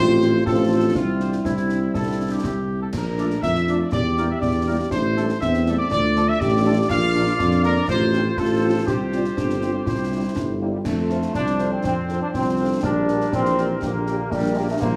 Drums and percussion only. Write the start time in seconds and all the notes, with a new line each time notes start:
0.22 snare
0.46 concert bass drum, snare
0.95 concert bass drum, snare
1.20 snare
1.32 snare
1.45 concert bass drum, snare
1.57 snare
1.69 snare
1.94 concert bass drum, snare
2.44 concert bass drum, snare
2.93 concert bass drum, snare, crash
3.18 snare
3.30 snare
3.43 concert bass drum, snare
3.55 snare
3.67 snare
3.92 concert bass drum, snare
4.17 snare
4.42 concert bass drum, snare
4.91 concert bass drum, snare
5.17 snare
5.29 snare
5.41 concert bass drum, snare
5.54 snare
5.66 snare
5.91 concert bass drum, snare
6.16 snare
6.41 concert bass drum, snare
6.90 concert bass drum, snare, crash
7.15 snare
7.27 snare
7.39 concert bass drum, snare
7.51 snare
7.63 snare
7.88 concert bass drum, snare
8.13 snare
8.37 concert bass drum, snare
8.87 concert bass drum, snare
9.12 snare
9.24 snare
9.37 concert bass drum, snare
9.50 snare
9.62 snare
9.86 concert bass drum, snare
10.36 concert bass drum, snare
10.85 concert bass drum, snare, crash
11.10 snare
11.22 snare
11.34 concert bass drum, snare
11.46 snare
11.59 snare
11.84 concert bass drum, snare
12.09 snare
12.34 concert bass drum, snare
12.83 concert bass drum, snare
13.08 snare
13.21 snare
13.32 concert bass drum, snare
13.45 snare
13.58 snare
13.82 concert bass drum, snare
14.07 snare
14.31 concert bass drum, snare
14.81 concert bass drum, snare, crash